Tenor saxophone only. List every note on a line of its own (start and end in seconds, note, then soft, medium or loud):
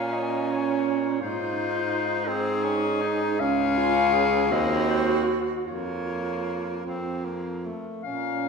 0.00 1.18 C#4 medium
1.22 2.29 D#4 medium
2.28 2.65 C4 medium
2.64 3.03 C#4 medium
3.02 3.40 D#4 medium
3.40 4.53 C#4 medium
4.51 5.37 C4 medium
5.66 6.81 A#3 medium
6.86 7.26 C4 medium
7.25 7.67 A#3 medium
7.65 8.04 A3 soft
8.04 8.49 C#4 medium